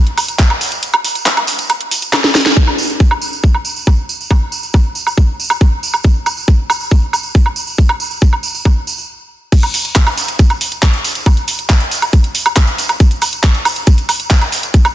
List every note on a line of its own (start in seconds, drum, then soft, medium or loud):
0.07 closed hi-hat soft
0.18 open hi-hat loud
0.18 tambourine medium
0.18 high woodblock soft
0.28 closed hi-hat soft
0.28 tambourine soft
0.39 kick loud
0.39 clap loud
0.39 closed hi-hat medium
0.50 closed hi-hat soft
0.50 high woodblock soft
0.61 open hi-hat medium
0.61 tambourine medium
0.72 closed hi-hat soft
0.72 tambourine soft
0.83 closed hi-hat medium
0.83 tambourine soft
0.94 closed hi-hat soft
0.94 high woodblock medium
1.04 open hi-hat loud
1.04 tambourine medium
1.15 closed hi-hat soft
1.15 tambourine soft
1.26 clap loud
1.26 closed hi-hat loud
1.26 tambourine soft
1.37 closed hi-hat soft
1.37 high woodblock soft
1.47 open hi-hat medium
1.47 tambourine medium
1.58 closed hi-hat soft
1.58 tambourine medium
1.69 closed hi-hat loud
1.69 tambourine soft
1.69 high woodblock soft
1.81 closed hi-hat soft
1.91 open hi-hat loud
1.91 tambourine medium
2.02 closed hi-hat soft
2.02 tambourine soft
2.13 snare medium
2.13 clap loud
2.13 closed hi-hat loud
2.13 high woodblock medium
2.24 snare medium
2.24 closed hi-hat soft
2.35 snare medium
2.35 open hi-hat medium
2.35 tambourine medium
2.45 snare medium
2.45 closed hi-hat soft
2.45 tambourine medium
2.57 kick loud
2.57 tambourine soft
2.68 high woodblock soft
2.78 tambourine loud
2.90 tambourine medium
3.00 kick loud
3.00 tambourine soft
3.11 high woodblock medium
3.21 tambourine medium
3.33 tambourine medium
3.44 kick loud
3.44 tambourine soft
3.54 high woodblock soft
3.65 tambourine medium
3.76 tambourine medium
3.87 kick loud
3.87 high woodblock soft
4.09 tambourine medium
4.21 tambourine soft
4.31 kick loud
4.31 high woodblock medium
4.52 tambourine medium
4.63 tambourine medium
4.74 kick loud
4.74 tambourine soft
4.74 high woodblock soft
4.95 tambourine medium
5.07 tambourine medium
5.07 high woodblock soft
5.18 kick loud
5.40 tambourine medium
5.50 tambourine soft
5.50 high woodblock medium
5.61 kick loud
5.61 tambourine soft
5.83 tambourine medium
5.94 tambourine medium
5.94 high woodblock soft
6.04 kick loud
6.04 tambourine soft
6.26 tambourine loud
6.26 high woodblock soft
6.37 tambourine medium
6.48 kick loud
6.70 tambourine medium
6.70 high woodblock medium
6.80 tambourine medium
6.91 kick loud
6.91 tambourine soft
7.13 tambourine loud
7.13 high woodblock soft
7.23 tambourine medium
7.35 kick loud
7.46 high woodblock soft
7.56 tambourine loud
7.67 tambourine medium
7.78 kick loud
7.89 high woodblock medium
8.00 tambourine medium
8.11 tambourine soft
8.21 kick loud
8.21 tambourine soft
8.33 high woodblock soft
8.43 tambourine medium
8.54 tambourine medium
8.65 kick loud
8.65 high woodblock soft
8.87 tambourine medium
8.98 tambourine medium
9.52 kick loud
9.52 closed hi-hat loud
9.52 crash loud
9.52 tambourine medium
9.63 closed hi-hat soft
9.63 tambourine soft
9.63 high woodblock soft
9.74 open hi-hat loud
9.74 tambourine medium
9.85 closed hi-hat soft
9.85 tambourine soft
9.95 kick loud
9.95 clap loud
9.95 closed hi-hat medium
9.95 tambourine soft
10.07 closed hi-hat soft
10.07 tambourine soft
10.07 high woodblock medium
10.17 open hi-hat medium
10.17 tambourine loud
10.28 closed hi-hat soft
10.28 tambourine soft
10.39 kick loud
10.39 closed hi-hat loud
10.39 tambourine medium
10.50 closed hi-hat soft
10.50 tambourine soft
10.50 high woodblock soft
10.61 open hi-hat loud
10.61 tambourine medium
10.72 closed hi-hat soft
10.72 tambourine soft
10.83 kick loud
10.83 clap loud
10.83 closed hi-hat loud
10.83 tambourine medium
10.83 high woodblock soft
10.94 closed hi-hat soft
10.94 tambourine soft
11.04 open hi-hat loud
11.04 tambourine loud
11.15 closed hi-hat soft
11.15 tambourine soft
11.26 kick loud
11.26 closed hi-hat loud
11.26 tambourine medium
11.26 high woodblock medium
11.37 closed hi-hat soft
11.37 tambourine soft
11.48 open hi-hat loud
11.48 tambourine loud
11.59 closed hi-hat soft
11.59 tambourine soft
11.70 kick loud
11.70 clap loud
11.70 closed hi-hat loud
11.70 tambourine medium
11.70 high woodblock soft
11.80 closed hi-hat soft
11.80 tambourine soft
11.91 open hi-hat medium
11.91 tambourine medium
12.02 closed hi-hat soft
12.02 tambourine soft
12.02 high woodblock soft
12.13 kick loud
12.13 closed hi-hat loud
12.13 tambourine medium
12.24 closed hi-hat soft
12.24 tambourine soft
12.35 open hi-hat loud
12.35 tambourine medium
12.46 closed hi-hat soft
12.46 tambourine soft
12.46 high woodblock medium
12.57 kick loud
12.57 clap loud
12.57 closed hi-hat loud
12.57 tambourine medium
12.67 closed hi-hat soft
12.67 tambourine soft
12.78 open hi-hat loud
12.78 tambourine loud
12.89 closed hi-hat soft
12.89 tambourine soft
12.89 high woodblock soft
13.00 kick loud
13.00 closed hi-hat medium
13.00 tambourine medium
13.11 closed hi-hat soft
13.11 tambourine soft
13.22 open hi-hat loud
13.22 tambourine loud
13.22 high woodblock soft
13.33 closed hi-hat soft
13.33 tambourine soft
13.44 kick loud
13.44 clap loud
13.44 closed hi-hat medium
13.54 closed hi-hat soft
13.54 tambourine soft
13.65 open hi-hat medium
13.65 tambourine medium
13.65 high woodblock medium
13.76 closed hi-hat soft
13.76 tambourine soft
13.87 kick loud
13.87 closed hi-hat loud
13.87 tambourine medium
13.98 closed hi-hat soft
13.98 tambourine soft
14.09 open hi-hat loud
14.09 tambourine medium
14.09 high woodblock soft
14.20 closed hi-hat soft
14.20 tambourine soft
14.30 kick loud
14.30 clap loud
14.30 closed hi-hat loud
14.30 tambourine medium
14.41 closed hi-hat soft
14.41 tambourine soft
14.41 high woodblock soft
14.52 open hi-hat loud
14.52 tambourine medium
14.63 closed hi-hat soft
14.63 tambourine soft
14.74 kick loud
14.74 closed hi-hat medium
14.74 tambourine medium
14.85 closed hi-hat soft
14.85 tambourine soft
14.85 high woodblock medium